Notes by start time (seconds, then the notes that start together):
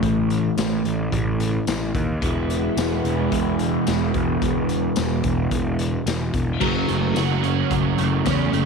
Already playing: A2 E3 A3 C#4 E4
0.03 A1, kick, closed hi-hat
0.30 closed hi-hat
0.58 A1, snare, closed hi-hat, tambourine
0.85 A1, closed hi-hat
1.12 A1, kick, closed hi-hat
1.40 closed hi-hat
1.67 A1, snare, closed hi-hat, tambourine
1.95 D#2, kick, closed hi-hat
2.20 E1 E2 B2 E3 G#3 B3 E4, kick, closed hi-hat
2.50 closed hi-hat
2.77 E1, snare, closed hi-hat, tambourine
3.04 E1, closed hi-hat
3.32 E1, kick, closed hi-hat
3.59 closed hi-hat
3.87 E1, snare, closed hi-hat, tambourine
4.14 E1, kick, closed hi-hat
4.42 E1, kick, closed hi-hat
4.69 closed hi-hat
4.96 E1, snare, closed hi-hat, tambourine
5.24 E1, kick, closed hi-hat
5.51 E1, kick, closed hi-hat
5.79 closed hi-hat
6.06 E1, snare, closed hi-hat, tambourine
6.34 E1, kick, closed hi-hat
6.60 F#1 F#2 C#3 F#3, kick, crash
6.88 F#1 F#2 C#3 A3, closed hi-hat
7.14 F#1 F#2 C#3 F#4, snare, closed hi-hat, tambourine
7.43 F#2 C#3 C#4, closed hi-hat
7.70 F#1 F#2 C#3 F#3, kick, closed hi-hat
7.98 F#1 F#2 C#3 A3, closed hi-hat
8.25 E2 F#2 C#3 C#4, kick, snare, closed hi-hat, tambourine
8.52 F#1 F#2 C#3 A3, closed hi-hat